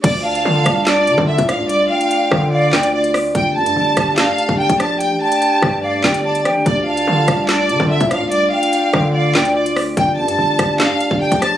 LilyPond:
<<
  \new Staff \with { instrumentName = "Flute" } { \time 4/4 \key d \minor \tempo 4 = 145 r8 a''2~ a''8 r4 | r8 g''4. f''8 g''8 r4 | r8 a''2~ a''8 r4 | r8 g''4. f''8 g''8 a''8 g''8 |
r8 a''2~ a''8 r4 | r8 g''4. f''8 g''8 r4 | r8 a''2~ a''8 r4 | }
  \new Staff \with { instrumentName = "Violin section" } { \time 4/4 \key d \minor d''8 f''4. d''4 e''8 f''8 | d''8 f''4. d''4 d''8 r8 | g''8 a''4. f''4 g''8 a''8 | g''8 a''4. d''4 d''8 r8 |
d''8 f''4. d''4 e''8 f''8 | d''8 f''4. d''4 d''8 r8 | g''8 a''4. f''4 g''8 a''8 | }
  \new Staff \with { instrumentName = "Glass harmonica" } { \time 4/4 \key d \minor << { <a d' d''>1~ | <a d' d''>1~ | <a d' d''>1~ | <a d' d''>1~ |
<a d' d''>1~ | <a d' d''>1 | <a d' d''>1 | } \\ { f'1~ | f'1 | g'1~ | g'1 |
f'1~ | f'1 | g'1 | } >> }
  \new Staff \with { instrumentName = "808-style bass" } { \clef bass \time 4/4 \key d \minor d,4 d8 c,4 d16 d8 a,8 c,16~ | c,8 r4 d4 d,4. | g,,8 g,8 g,,8 g,,8 g,16 r8 g,,8 bes,,8.~ | bes,,16 a,,16 r4 g,4 g,,4 bes,,16 g,,16 |
d,4 d8 c,4 d16 d8 a,8 c,16~ | c,8 r4 d4 d,4. | g,,8 g,8 g,,8 g,,8 g,16 r8 g,,8 bes,,8. | }
  \new DrumStaff \with { instrumentName = "Drums" } \drummode { \time 4/4 <cymc hh bd>8. hh16 r8 <hh bd ss>8 <hc hh sn>8 hh16 bd16 r16 <hh bd>16 <hh ss>8 | hh8. hh16 hh8 <bd ss>8 r8 <hc sn>16 hh16 r16 hh16 <hho ss>8 | <hh bd>8. hh16 r8 <hh bd ss>8 <hc hh sn>8 hh16 bd16 r16 <hh bd>16 <hh ss>8 | hh8. hh16 hh8 <bd ss>8 r8 <hc bd sn>16 hh16 r16 hh16 <hh ss>8 |
<hh bd>8. hh16 r8 <hh bd ss>8 <hc hh sn>8 hh16 bd16 r16 <hh bd>16 <hh ss>8 | hh8. hh16 hh8 <bd ss>8 r8 <hc sn>16 hh16 r16 hh16 <hho ss>8 | <hh bd>8. hh16 r8 <hh bd ss>8 <hc hh sn>8 hh16 bd16 r16 <hh bd>16 <hh ss>8 | }
>>